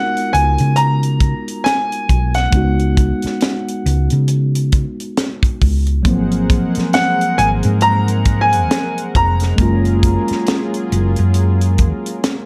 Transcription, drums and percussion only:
0.17 closed hi-hat soft
0.34 closed hi-hat medium
0.58 closed hi-hat soft
0.76 closed hi-hat medium
1.03 closed hi-hat medium
1.20 kick medium
1.20 closed hi-hat medium
1.48 closed hi-hat soft
1.66 snare loud
1.66 closed hi-hat medium
1.92 closed hi-hat soft
2.09 kick medium
2.09 closed hi-hat medium
2.34 snare soft
2.34 closed hi-hat soft
2.52 kick loud
2.52 closed hi-hat medium
2.79 closed hi-hat soft
2.97 kick medium
2.97 closed hi-hat medium
3.22 snare soft
3.22 closed hi-hat soft
3.41 snare loud
3.41 closed hi-hat medium
3.68 closed hi-hat soft
3.86 closed hi-hat medium
4.10 closed hi-hat soft
4.28 closed hi-hat medium
4.55 closed hi-hat medium
4.72 kick medium
4.72 closed hi-hat medium
5.00 closed hi-hat soft
5.17 snare loud
5.17 closed hi-hat medium
5.43 kick loud
5.43 closed hi-hat soft
5.61 kick medium
5.61 open hi-hat soft
5.87 closed hi-hat soft
6.05 kick loud
6.05 closed hi-hat medium
6.31 closed hi-hat soft
6.50 kick loud
6.50 closed hi-hat medium
6.75 snare soft
6.75 closed hi-hat soft
6.93 snare loud
6.93 closed hi-hat medium
7.21 closed hi-hat soft
7.38 closed hi-hat medium
7.63 closed hi-hat medium
7.81 closed hi-hat medium
8.08 closed hi-hat medium
8.25 kick medium
8.25 closed hi-hat medium
8.53 closed hi-hat medium
8.71 snare loud
8.71 closed hi-hat medium
8.98 closed hi-hat soft
9.15 kick medium
9.15 closed hi-hat medium
9.40 snare soft
9.40 closed hi-hat soft
9.58 kick loud
9.58 closed hi-hat medium
9.85 closed hi-hat soft
10.03 kick medium
10.03 closed hi-hat medium
10.28 snare soft
10.28 closed hi-hat soft
10.46 snare loud
10.46 closed hi-hat medium
10.74 closed hi-hat soft
10.92 closed hi-hat medium
11.16 closed hi-hat soft
11.34 closed hi-hat medium
11.61 closed hi-hat medium
11.78 kick medium
11.78 closed hi-hat medium
12.06 closed hi-hat soft
12.23 snare loud
12.23 closed hi-hat medium

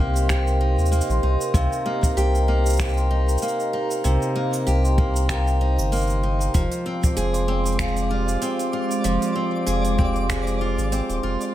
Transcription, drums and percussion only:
0.16 cabasa medium
0.29 finger snap medium
0.29 kick medium
0.29 cabasa medium
0.47 cabasa soft
0.79 cabasa soft
0.86 cabasa soft
0.92 cabasa medium
1.01 cabasa medium
1.10 cabasa soft
1.41 cabasa medium
1.54 kick loud
1.54 cabasa medium
1.72 cabasa soft
2.03 kick medium
2.03 cabasa medium
2.18 cabasa medium
2.35 cabasa soft
2.66 cabasa medium
2.70 cabasa medium
2.73 cabasa soft
2.77 finger snap medium
2.77 kick medium
2.77 cabasa soft
2.89 cabasa soft
2.93 cabasa soft
2.97 cabasa soft
3.29 cabasa medium
3.38 cabasa medium
3.42 cabasa medium
3.48 cabasa soft
3.60 cabasa soft
3.91 cabasa medium
4.04 cabasa medium
4.22 cabasa soft
4.53 cabasa medium
4.67 cabasa medium
4.85 cabasa soft
4.98 kick loud
5.16 cabasa medium
5.29 finger snap medium
5.29 kick medium
5.29 cabasa medium
5.47 cabasa soft
5.79 cabasa medium
5.92 cabasa medium
5.95 cabasa soft
5.98 cabasa soft
6.01 cabasa soft
6.03 cabasa soft
6.07 cabasa soft
6.10 cabasa soft
6.41 cabasa medium
6.54 kick loud
6.54 open hi-hat medium
6.54 cabasa medium
6.72 open hi-hat soft
6.72 cabasa soft
7.03 kick loud
7.03 cabasa medium
7.17 open hi-hat medium
7.17 cabasa medium
7.34 open hi-hat soft
7.34 cabasa soft
7.66 open hi-hat soft
7.66 cabasa medium
7.72 open hi-hat soft
7.79 finger snap medium
7.79 kick medium
7.79 open hi-hat medium
7.79 cabasa medium
7.88 open hi-hat soft
7.97 open hi-hat soft
7.97 cabasa soft
8.28 open hi-hat soft
8.28 cabasa medium
8.42 open hi-hat medium
8.42 cabasa medium
8.59 open hi-hat soft
8.59 cabasa soft
8.91 open hi-hat soft
8.91 cabasa medium
9.04 open hi-hat medium
9.04 cabasa medium
9.22 open hi-hat soft
9.22 cabasa soft
9.67 open hi-hat medium
9.67 cabasa medium
9.85 open hi-hat soft
9.85 cabasa soft
9.99 kick loud
10.16 open hi-hat soft
10.29 finger snap medium
10.29 kick medium
10.29 open hi-hat medium
10.29 cabasa medium
10.47 open hi-hat soft
10.47 cabasa soft
10.78 open hi-hat soft
10.78 cabasa medium
10.92 open hi-hat medium
10.92 cabasa medium
11.10 open hi-hat soft
11.10 cabasa soft
11.41 open hi-hat soft
11.41 cabasa medium

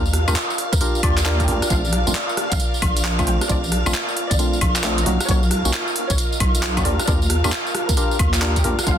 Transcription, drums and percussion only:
0.06 tambourine soft
0.13 cross-stick medium
0.13 open hi-hat loud
0.28 tambourine medium
0.28 high woodblock medium
0.36 clap loud
0.36 tambourine medium
0.50 tambourine soft
0.58 open hi-hat medium
0.73 kick loud
0.73 closed hi-hat medium
0.73 tambourine medium
0.81 closed hi-hat medium
0.81 tambourine medium
0.95 tambourine soft
1.03 kick loud
1.03 open hi-hat loud
1.03 high woodblock medium
1.17 clap medium
1.17 closed hi-hat medium
1.17 tambourine medium
1.26 clap loud
1.40 kick medium
1.40 closed hi-hat medium
1.40 tambourine soft
1.48 open hi-hat medium
1.62 cross-stick medium
1.62 closed hi-hat soft
1.62 tambourine medium
1.70 kick loud
1.70 closed hi-hat medium
1.70 tambourine medium
1.85 tambourine soft
1.93 cross-stick medium
1.93 open hi-hat loud
2.07 tambourine medium
2.15 clap loud
2.29 tambourine soft
2.37 cross-stick medium
2.37 open hi-hat medium
2.52 kick loud
2.52 closed hi-hat medium
2.52 tambourine medium
2.60 closed hi-hat medium
2.60 tambourine medium
2.74 tambourine soft
2.82 kick loud
2.82 open hi-hat loud
2.82 high woodblock medium
2.97 closed hi-hat medium
2.97 tambourine medium
3.05 clap loud
3.05 tambourine medium
3.19 kick medium
3.19 closed hi-hat medium
3.19 tambourine soft
3.19 high woodblock medium
3.27 open hi-hat medium
3.41 cross-stick medium
3.41 closed hi-hat soft
3.41 tambourine medium
3.49 kick loud
3.49 closed hi-hat medium
3.49 tambourine medium
3.64 tambourine soft
3.72 cross-stick medium
3.72 open hi-hat loud
3.86 tambourine medium
3.86 high woodblock medium
3.94 clap loud
4.09 tambourine soft
4.17 open hi-hat medium
4.31 kick loud
4.31 closed hi-hat medium
4.31 tambourine medium
4.39 closed hi-hat medium
4.39 tambourine medium
4.53 tambourine soft
4.61 kick loud
4.61 open hi-hat loud
4.61 high woodblock medium
4.76 clap medium
4.76 closed hi-hat medium
4.76 tambourine medium
4.84 clap loud
4.84 tambourine medium
4.98 closed hi-hat medium
4.98 tambourine soft
5.06 open hi-hat medium
5.21 cross-stick medium
5.21 closed hi-hat soft
5.21 tambourine medium
5.29 kick loud
5.29 closed hi-hat medium
5.29 tambourine medium
5.43 tambourine soft
5.51 cross-stick medium
5.51 open hi-hat loud
5.65 tambourine medium
5.73 clap loud
5.88 tambourine soft
5.96 open hi-hat loud
6.10 kick loud
6.10 closed hi-hat medium
6.10 tambourine medium
6.18 closed hi-hat medium
6.18 tambourine medium
6.32 tambourine soft
6.40 kick loud
6.40 open hi-hat loud
6.40 high woodblock medium
6.55 closed hi-hat medium
6.55 tambourine medium
6.63 clap loud
6.63 tambourine medium
6.77 kick medium
6.77 closed hi-hat medium
6.77 tambourine soft
6.77 high woodblock medium
6.85 open hi-hat loud
6.99 cross-stick medium
6.99 closed hi-hat soft
6.99 tambourine medium
7.07 kick loud
7.07 closed hi-hat medium
7.07 tambourine medium
7.22 tambourine soft
7.30 cross-stick medium
7.30 open hi-hat loud
7.44 tambourine medium
7.44 high woodblock medium
7.52 clap loud
7.67 tambourine soft
7.75 cross-stick medium
7.75 open hi-hat loud
7.89 kick loud
7.89 closed hi-hat medium
7.89 tambourine medium
7.97 closed hi-hat medium
7.97 tambourine medium
8.11 tambourine soft
8.19 kick loud
8.19 open hi-hat loud
8.19 high woodblock medium
8.34 clap medium
8.34 closed hi-hat medium
8.34 tambourine medium
8.42 clap loud
8.42 tambourine medium
8.56 kick medium
8.56 closed hi-hat medium
8.56 tambourine soft
8.64 open hi-hat loud
8.79 cross-stick medium
8.79 closed hi-hat soft
8.79 tambourine medium
8.87 kick loud
8.87 closed hi-hat medium
8.87 tambourine medium

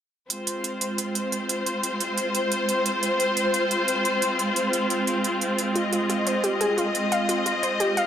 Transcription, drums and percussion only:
0.30 closed hi-hat medium
0.47 closed hi-hat medium
0.64 closed hi-hat medium
0.81 closed hi-hat medium
0.98 closed hi-hat medium
1.15 closed hi-hat medium
1.32 closed hi-hat medium
1.49 closed hi-hat loud
1.66 closed hi-hat medium
1.83 closed hi-hat medium
2.00 closed hi-hat medium
2.18 closed hi-hat medium
2.35 closed hi-hat medium
2.52 closed hi-hat loud
2.69 closed hi-hat medium
2.86 closed hi-hat medium
3.03 closed hi-hat medium
3.20 closed hi-hat medium
3.37 closed hi-hat medium
3.54 closed hi-hat medium
3.71 closed hi-hat medium
3.88 closed hi-hat medium
4.05 closed hi-hat medium
4.22 closed hi-hat medium
4.39 closed hi-hat medium
4.56 closed hi-hat medium
4.73 closed hi-hat medium
4.90 closed hi-hat medium
5.07 closed hi-hat medium
5.24 closed hi-hat medium
5.41 closed hi-hat medium
5.58 closed hi-hat medium
5.76 closed hi-hat medium
5.93 closed hi-hat medium
6.10 closed hi-hat medium
6.27 closed hi-hat medium
6.44 closed hi-hat medium
6.61 closed hi-hat medium
6.78 closed hi-hat medium
6.95 closed hi-hat medium
7.12 closed hi-hat medium
7.29 closed hi-hat medium
7.46 closed hi-hat medium
7.63 closed hi-hat medium
7.80 closed hi-hat medium
7.97 closed hi-hat medium

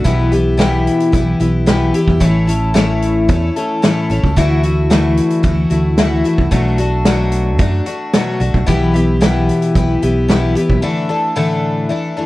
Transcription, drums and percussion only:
0.05 kick medium
0.05 closed hi-hat soft
0.33 closed hi-hat soft
0.60 snare medium
0.60 closed hi-hat soft
0.87 closed hi-hat medium
1.00 closed hi-hat soft
1.13 kick medium
1.13 closed hi-hat medium
1.40 closed hi-hat medium
1.67 snare medium
1.67 closed hi-hat soft
1.94 closed hi-hat medium
2.08 kick medium
2.21 kick medium
2.21 closed hi-hat medium
2.48 closed hi-hat medium
2.75 snare medium
2.75 closed hi-hat medium
3.02 closed hi-hat medium
3.29 kick medium
3.29 closed hi-hat medium
3.56 closed hi-hat medium
3.83 snare medium
3.83 closed hi-hat medium
4.11 closed hi-hat medium
4.24 kick medium
4.37 kick medium
4.37 closed hi-hat soft
4.64 closed hi-hat medium
4.91 snare medium
4.91 closed hi-hat soft
5.17 closed hi-hat medium
5.30 closed hi-hat medium
5.43 kick medium
5.43 closed hi-hat soft
5.70 closed hi-hat medium
5.98 snare medium
5.98 closed hi-hat soft
6.25 closed hi-hat medium
6.38 kick medium
6.51 kick medium
6.51 closed hi-hat soft
6.78 closed hi-hat medium
7.05 snare loud
7.05 closed hi-hat medium
7.32 closed hi-hat medium
7.59 kick medium
7.59 closed hi-hat medium
7.86 closed hi-hat medium
8.13 snare medium
8.13 closed hi-hat medium
8.41 closed hi-hat medium
8.54 kick medium
8.68 kick medium
8.68 closed hi-hat soft
8.96 closed hi-hat medium
9.22 snare medium
9.22 closed hi-hat soft
9.49 closed hi-hat medium
9.62 closed hi-hat soft
9.75 kick medium
9.75 closed hi-hat soft
10.02 closed hi-hat medium
10.29 snare medium
10.29 closed hi-hat soft
10.56 closed hi-hat medium
10.70 kick medium

